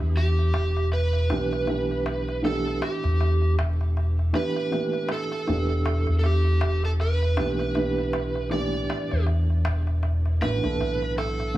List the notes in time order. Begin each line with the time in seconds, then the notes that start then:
Already playing: E3 B3 D4 G4
0.00 E2, darbuka tek
0.17 G4, darbuka tek
0.39 darbuka tek
0.54 E1, darbuka tek
0.77 darbuka tek
0.92 B4, darbuka tek
1.13 darbuka tek
1.30 B1 E3 B3 D4 G4, darbuka tek
1.53 darbuka tek
1.67 E3 B3 D4 G4, darbuka tek
1.91 darbuka tek
2.06 darbuka tek
2.28 darbuka tek
2.42 E3 B3 D4 G4 A4, darbuka tek
2.67 darbuka tek
2.82 G4, darbuka tek
3.04 E2, darbuka tek
3.21 darbuka tek
3.42 darbuka tek
3.59 E1, darbuka tek
3.81 darbuka tek
3.97 darbuka tek
4.19 darbuka tek
4.33 E3 B3 D4 G4 B4, darbuka tek
4.56 darbuka tek
4.71 E3 B3 D4 G4, darbuka tek
4.93 darbuka tek
5.09 A4, darbuka tek
5.32 darbuka tek
5.47 E1 E3 B3 D4 G4, darbuka tek
5.70 darbuka tek
5.86 darbuka tek
6.07 E2, darbuka tek
6.19 A4
6.24 G4, darbuka tek
6.45 darbuka tek
6.61 E1, darbuka tek
6.84 A4, darbuka tek
7.00 B4, darbuka tek
7.22 darbuka tek
7.37 B1 E3 B3 D4 G4, darbuka tek
7.59 darbuka tek
7.75 E3 B3 D4 G4, darbuka tek
7.98 darbuka tek
8.13 darbuka tek
8.35 darbuka tek
8.50 E3 B3 D4 G4 D5, darbuka tek
8.74 darbuka tek
8.90 darbuka tek
9.11 E2, darbuka tek
9.26 darbuka tek
9.50 darbuka tek
9.65 E1, darbuka tek
9.87 darbuka tek
10.03 darbuka tek
10.26 darbuka tek
10.41 A1 E3 B3 D4 F#4 B4, darbuka tek
10.63 B1 E3 B3 D4 A4, darbuka tek
10.80 B1, darbuka tek
11.02 darbuka tek
11.18 A4, darbuka tek
11.40 darbuka tek
11.54 D3